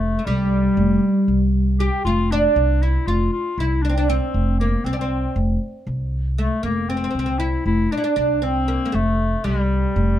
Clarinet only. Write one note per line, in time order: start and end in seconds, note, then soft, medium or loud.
0.00 0.27 A3 medium
0.25 1.52 G3 medium
1.79 2.03 G4 medium
2.05 2.32 F4 medium
2.31 2.84 D4 medium
2.83 3.08 E4 medium
3.07 3.32 F4 medium
3.32 3.60 F4 medium
3.58 3.84 E4 medium
3.82 3.95 D4 medium
3.96 4.10 D4 medium
4.09 4.58 C4 medium
4.59 4.86 A#3 medium
4.85 4.98 C4 medium
4.98 5.39 C4 medium
6.39 6.62 A3 medium
6.64 6.91 A#3 medium
6.89 7.40 C4 medium
7.39 7.65 E4 medium
7.66 7.94 E4 medium
7.92 8.04 D4 medium
8.05 8.16 D4 medium
8.18 8.45 D4 medium
8.43 8.96 C4 medium
8.95 9.46 A3 medium
9.45 9.60 G#3 medium
9.60 10.19 G3 medium